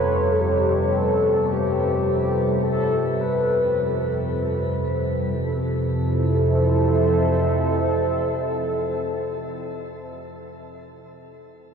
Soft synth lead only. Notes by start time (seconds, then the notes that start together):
Already playing: B4
0.32 A4
0.41 G4
0.96 A4
1.52 G4
2.63 A4
3.21 B4
5.36 A4